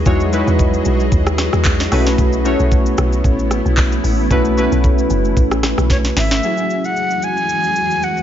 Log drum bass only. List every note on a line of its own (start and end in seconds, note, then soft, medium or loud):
0.06 0.43 E2 loud
0.47 0.82 E2 loud
0.86 1.10 B1 medium
1.12 1.49 D#2 loud
1.53 1.88 E2 medium
1.92 2.16 B1 loud
2.18 2.56 B1 loud
2.60 2.94 B1 loud
2.98 3.22 B1 loud
3.24 3.62 A1 loud
3.65 4.00 B1 loud
4.04 4.28 A1 medium
4.31 4.68 B1 loud
4.72 5.07 B1 loud
5.10 5.34 F#1 loud
5.37 5.74 A1 medium
5.78 6.13 B1 medium
6.16 6.41 G#1 loud